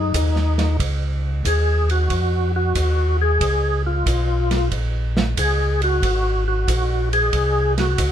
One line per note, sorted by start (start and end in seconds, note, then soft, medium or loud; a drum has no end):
0.00 0.13 F#2 medium
0.00 0.77 D#4 medium
0.14 0.78 D#2 medium
0.14 kick soft
0.14 hi-hat pedal medium
0.14 ride medium
0.36 snare soft
0.58 snare soft
0.58 ride soft
0.80 1.43 C#2 medium
0.80 kick soft
0.80 ride medium
1.45 2.08 D#2 medium
1.45 1.89 G#4 medium
1.45 kick soft
1.45 hi-hat pedal medium
1.45 ride medium
1.90 2.52 F#4 medium
1.90 ride soft
2.10 2.74 F2 medium
2.10 kick soft
2.10 ride medium
2.56 3.17 F#4 medium
2.75 3.39 D#2 medium
2.75 kick soft
2.75 hi-hat pedal soft
2.75 ride medium
3.22 3.82 G#4 loud
3.41 4.04 C#2 medium
3.41 kick soft
3.41 ride medium
3.86 4.68 F4 medium
4.06 4.70 B1 medium
4.06 kick soft
4.06 hi-hat pedal medium
4.06 ride medium
4.51 snare soft
4.51 ride soft
4.71 5.35 A#1 medium
4.71 kick soft
4.71 ride medium
5.17 snare medium
5.37 6.01 C#2 medium
5.37 5.81 G#4 medium
5.37 kick soft
5.37 hi-hat pedal medium
5.37 ride medium
5.82 6.44 F#4 loud
5.82 ride soft
6.02 6.66 G#1 medium
6.02 kick soft
6.02 ride medium
6.48 7.09 F#4 medium
6.68 7.31 A#1 medium
6.68 kick soft
6.68 hi-hat pedal medium
6.68 ride medium
7.13 7.74 G#4 loud
7.13 ride soft
7.33 7.97 C2 medium
7.33 kick soft
7.33 ride medium
7.78 8.12 F#4 medium
7.78 snare soft
7.78 ride soft
7.98 8.12 C#2 medium
7.98 kick soft
7.98 hi-hat pedal medium
7.98 ride medium